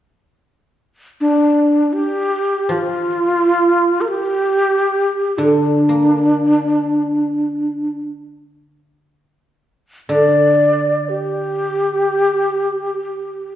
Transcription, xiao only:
1.21 1.95 D4 medium
1.93 2.73 G4 medium
2.72 4.03 F4 medium
4.01 4.10 A#4 medium
4.09 5.39 G4 medium
5.38 8.02 D4 medium
10.09 11.11 D5 medium
11.09 13.56 G4 medium

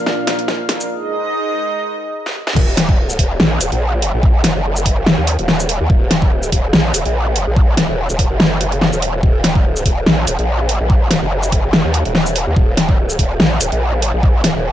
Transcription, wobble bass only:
2.56 3.17 D#1 loud
3.19 3.38 D#1 loud
3.40 3.59 A#1 loud
3.61 3.70 D#1 loud
3.72 4.12 A#1 loud
4.14 4.54 A#1 loud
4.55 5.16 F#1 loud
5.18 5.37 D#2 loud
5.39 5.79 D#1 loud
5.80 5.88 D#2 loud
5.90 6.33 D#1 loud
6.33 6.51 D1 loud
6.52 6.72 D#1 loud
6.73 6.93 A#1 loud
6.94 7.04 D#1 loud
7.05 7.45 A#1 loud
7.47 7.87 A#1 loud
7.89 8.08 D#1 loud
8.10 8.29 D#1 loud
8.30 8.91 F#1 loud
8.93 9.22 D#1 loud
9.23 9.66 D#1 loud
9.66 9.84 D1 loud
9.86 10.05 D#1 loud
10.06 10.26 A#1 loud
10.27 10.37 D#1 loud
10.39 10.79 A#1 loud
10.80 11.20 A#1 loud
11.22 11.83 F#1 loud
11.85 12.04 D#2 loud
12.05 12.45 D#1 loud
12.47 12.55 D#2 loud
12.56 13.17 D#1 loud
13.19 13.38 D#1 loud
13.40 13.59 A#1 loud
13.61 13.70 D#1 loud
13.72 14.12 A#1 loud
14.14 14.54 A#1 loud
14.55 14.72 D#1 medium

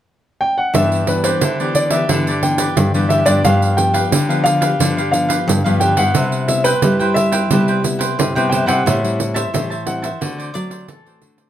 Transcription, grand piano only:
0.41 0.58 G5 loud
0.58 0.73 F#5 medium
0.75 1.09 E5 loud
1.08 1.26 B4 medium
1.24 1.77 C5 medium
1.75 1.91 D5 medium
1.91 2.44 E5 medium
2.43 3.13 G5 medium
3.09 3.27 E5 medium
3.26 3.42 D5 medium
3.45 3.76 F5 loud
3.77 4.48 G5 loud
4.44 5.10 F5 loud
5.11 5.77 F5 medium
5.80 5.97 G5 medium
5.97 6.45 F#5 loud
6.48 6.64 E5 medium
6.64 7.12 B4 loud
7.14 8.47 E5 loud
8.49 8.54 G5 medium
8.67 9.38 F#5 medium
9.35 9.88 E5 medium
9.86 11.18 F#5 medium

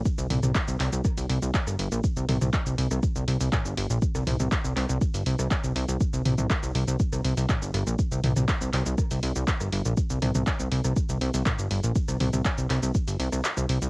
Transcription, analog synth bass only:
0.18 0.27 C2 medium
0.30 0.40 C2 loud
0.43 0.52 C2 medium
0.68 0.77 C2 medium
0.80 0.89 C2 loud
0.93 1.01 C2 medium
1.18 1.26 C2 medium
1.29 1.39 C2 loud
1.42 1.51 C2 medium
1.67 1.76 G1 medium
1.79 1.88 G1 loud
1.92 2.01 A#1 medium
2.17 2.25 C2 medium
2.29 2.38 C2 loud
2.41 2.50 C2 medium
2.66 2.75 C2 medium
2.78 2.87 C2 loud
2.91 3.00 C2 medium
3.16 3.25 C2 medium
3.28 3.37 C2 loud
3.41 3.49 C2 medium
3.65 3.74 G1 medium
3.77 3.87 G1 loud
3.90 3.99 A#1 medium
4.15 4.24 C2 medium
4.27 4.36 C2 loud
4.40 4.48 C2 medium
4.65 4.73 C2 medium
4.76 4.86 C2 loud
4.89 4.98 C2 medium
5.14 5.23 G1 medium
5.26 5.35 C2 loud
5.39 5.48 C2 medium
5.64 5.72 C2 medium
5.76 5.85 C2 loud
5.88 5.97 C2 medium
6.13 6.22 C2 medium
6.25 6.35 C2 loud
6.38 6.47 C2 medium
6.63 6.72 C2 medium
6.75 6.84 C2 loud
6.88 6.96 C2 medium
7.12 7.21 C2 medium
7.24 7.34 C2 loud
7.37 7.46 C2 medium
7.62 7.71 G1 medium
7.74 7.83 G1 loud
7.87 7.96 A#1 medium
8.12 8.20 C2 medium
8.24 8.33 C2 loud
8.37 8.45 C2 medium
8.61 8.70 C2 medium
8.73 8.83 C2 loud
8.86 8.95 C2 medium
9.11 9.20 C2 medium
9.23 9.32 C2 loud
9.36 9.44 C2 medium
9.61 9.69 G1 medium
9.73 9.82 G1 loud
9.85 9.94 A#1 medium
10.10 10.19 C2 medium
10.22 10.31 C2 loud
10.35 10.44 C2 medium
10.60 10.68 C2 medium
10.72 10.81 C2 loud
10.85 10.93 C2 medium
11.09 11.18 C2 medium
11.21 11.30 C2 loud
11.34 11.43 C2 medium
11.59 11.68 G1 medium
11.71 11.80 G1 loud
11.84 11.92 A#1 medium
12.08 12.17 C2 medium
12.20 12.30 C2 loud
12.33 12.42 C2 medium
12.58 12.67 C2 medium
12.70 12.79 C2 loud
12.83 12.91 C2 medium
13.08 13.16 G1 medium
13.20 13.29 C2 loud
13.32 13.41 C2 medium
13.57 13.66 C2 medium
13.69 13.78 C2 loud
13.82 13.90 C2 medium

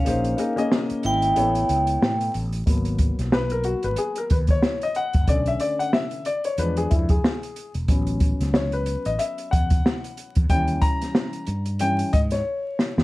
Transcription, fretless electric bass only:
0.07 0.34 A#1 loud
0.91 muted fretless electric bass stroke soft
1.05 1.32 G#1 medium
1.37 1.64 A1 loud
1.69 1.96 C#2 medium
2.02 2.29 A2 loud
2.35 2.62 A1 medium
2.67 3.10 G#1 loud
3.19 3.73 B1 medium
3.84 3.95 G#1 medium
4.31 4.58 D#2 medium
5.15 5.26 F#1 medium
5.28 5.55 B1 loud
6.58 6.85 E2 medium
6.92 7.19 F2 medium
7.75 7.86 E1 medium
7.89 8.32 A1 loud
8.40 8.95 C#2 medium
9.06 9.17 A1 medium
9.53 9.80 E2 loud
10.37 10.48 E2 medium
10.50 10.77 D#2 loud
11.48 12.02 G2 medium
12.14 12.41 G#2 loud
12.98 13.04 D#2 loud

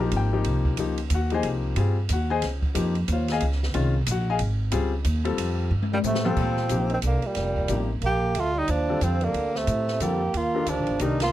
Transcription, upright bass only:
0.00 0.11 A#1 medium
0.12 0.44 G#1 medium
0.45 0.77 C2 medium
0.77 1.10 C#2 medium
1.10 1.43 D#2 medium
1.43 1.75 C2 medium
1.76 2.08 G2 medium
2.09 2.41 D#2 medium
2.42 2.74 C#2 medium
2.75 3.07 F2 medium
3.08 3.40 D#2 medium
3.41 3.73 C#2 medium
3.75 4.06 C2 medium
4.07 4.39 A#1 medium
4.39 4.72 G#1 medium
4.73 5.04 C#2 medium
5.05 5.37 D#2 medium
5.38 5.70 F2 medium
5.71 6.03 G2 medium
6.04 6.36 A2 medium
6.36 6.69 A#2 medium
6.70 7.02 A#1 medium
7.03 7.22 C2 medium
7.23 muted upright bass stroke soft
7.36 7.68 F1 medium
7.69 8.01 A1 medium
8.01 8.34 A#1 medium
8.35 8.67 D2 medium
8.68 9.01 D#2 medium
9.01 9.33 F2 medium
9.34 9.66 D2 medium
9.67 9.99 A2 medium
10.00 10.33 F2 medium
10.34 10.66 D#2 medium
10.66 10.79 D2 medium
10.77 10.88 A#1 medium
10.89 10.99 G1 medium
11.00 11.32 C2 medium

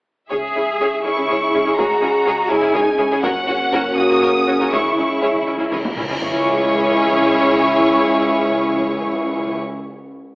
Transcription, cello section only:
0.31 1.02 G#4 medium
1.05 1.79 E4 medium
1.78 2.50 F#4 medium
2.51 2.75 E4 medium
2.74 2.99 D#4 medium
2.98 4.69 C#4 medium
4.72 5.84 E4 medium
6.22 9.57 C#2 medium

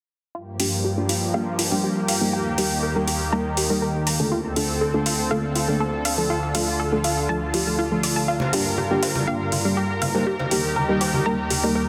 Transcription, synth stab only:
0.60 0.94 G3 medium
0.60 0.94 A#3 medium
0.60 0.94 D4 medium
0.60 0.94 F4 medium
0.60 0.94 G4 medium
0.97 1.08 G3 medium
0.97 1.08 A#3 medium
0.97 1.08 D4 medium
0.97 1.08 F4 medium
0.97 1.08 G4 loud
1.34 1.45 G3 medium
1.34 1.45 A#3 medium
1.34 1.45 D4 medium
1.34 1.45 F4 medium
1.34 1.45 G4 loud
1.72 1.89 G3 medium
1.72 1.89 A#3 medium
1.72 1.89 D4 medium
1.72 1.89 F4 medium
1.72 1.89 G4 loud
2.21 2.39 G3 medium
2.21 2.39 A#3 medium
2.21 2.39 D#4 medium
2.21 2.39 G4 medium
2.21 2.39 A#4 medium
2.58 2.93 G3 medium
2.58 2.93 A#3 medium
2.58 2.93 D#4 medium
2.58 2.93 G4 medium
2.58 2.93 A#4 medium
2.96 3.06 G3 medium
2.96 3.06 A#3 medium
2.96 3.06 D#4 medium
2.96 3.06 G4 medium
2.96 3.06 A#4 loud
3.32 3.44 G3 medium
3.32 3.44 A#3 medium
3.32 3.44 D#4 medium
3.32 3.44 G4 medium
3.32 3.44 A#4 loud
3.70 3.87 G3 medium
3.70 3.87 A#3 medium
3.70 3.87 D#4 medium
3.70 3.87 G4 medium
3.70 3.87 A#4 loud
4.20 4.37 D3 medium
4.20 4.37 A3 medium
4.20 4.37 A#3 medium
4.20 4.37 D4 medium
4.20 4.37 F4 medium
4.20 4.37 A4 medium
4.56 4.91 D3 medium
4.56 4.91 A3 medium
4.56 4.91 A#3 medium
4.56 4.91 D4 medium
4.56 4.91 F4 medium
4.56 4.91 A4 medium
4.94 5.05 D3 medium
4.94 5.05 A3 medium
4.94 5.05 A#3 medium
4.94 5.05 D4 medium
4.94 5.05 F4 medium
4.94 5.05 A4 loud
5.31 5.42 D3 medium
5.31 5.42 A3 medium
5.31 5.42 A#3 medium
5.31 5.42 D4 medium
5.31 5.42 F4 medium
5.31 5.42 A4 loud
5.68 5.86 D3 medium
5.68 5.86 A3 medium
5.68 5.86 A#3 medium
5.68 5.86 D4 medium
5.68 5.86 F4 medium
5.68 5.86 A4 loud
6.18 6.35 F3 medium
6.18 6.35 A3 medium
6.18 6.35 D4 medium
6.18 6.35 F4 medium
6.18 6.35 A4 medium
6.55 6.89 F3 medium
6.55 6.89 A3 medium
6.55 6.89 D4 medium
6.55 6.89 F4 medium
6.55 6.89 A4 medium
6.92 7.03 F3 medium
6.92 7.03 A3 medium
6.92 7.03 D4 medium
6.92 7.03 F4 medium
6.92 7.03 A4 loud
7.29 7.40 F3 medium
7.29 7.40 A3 medium
7.29 7.40 D4 medium
7.29 7.40 F4 medium
7.29 7.40 A4 loud
7.54 7.64 F3 medium
7.54 7.64 A3 medium
7.54 7.64 D4 medium
7.54 7.64 F4 medium
7.54 7.64 G4 loud
7.67 7.84 F3 medium
7.67 7.84 A3 medium
7.67 7.84 D4 medium
7.67 7.84 F4 medium
7.67 7.84 A4 medium
7.91 8.27 F3 medium
7.91 8.27 A3 medium
7.91 8.27 D4 medium
7.91 8.27 F4 medium
7.91 8.27 A4 medium
8.53 8.88 G3 medium
8.53 8.88 A#3 medium
8.53 8.88 D4 medium
8.53 8.88 F4 medium
8.53 8.88 G4 medium
8.91 9.01 G3 medium
8.91 9.01 A#3 medium
8.91 9.01 D4 medium
8.91 9.01 F4 medium
8.91 9.01 G4 loud
9.27 9.39 G3 medium
9.27 9.39 A#3 medium
9.27 9.39 D4 medium
9.27 9.39 F4 medium
9.27 9.39 G4 loud
9.65 9.82 G3 medium
9.65 9.82 A#3 medium
9.65 9.82 D4 medium
9.65 9.82 F4 medium
9.65 9.82 G4 loud
10.15 10.32 G3 medium
10.15 10.32 A#3 medium
10.15 10.32 D#4 medium
10.15 10.32 G4 medium
10.15 10.32 A#4 medium
10.51 10.86 G3 medium
10.51 10.86 A#3 medium
10.51 10.86 D#4 medium
10.51 10.86 G4 medium
10.51 10.86 A#4 loud
10.89 11.00 G3 medium
10.89 11.00 A#3 medium
10.89 11.00 D#4 medium
10.89 11.00 G4 medium
10.89 11.00 A#4 loud
11.26 11.37 G3 medium
11.26 11.37 A#3 medium
11.26 11.37 D#4 medium
11.26 11.37 G4 medium
11.26 11.37 A#4 loud
11.63 11.81 G3 medium
11.63 11.81 A#3 medium
11.63 11.81 D#4 medium
11.63 11.81 G4 medium
11.63 11.81 A#4 loud

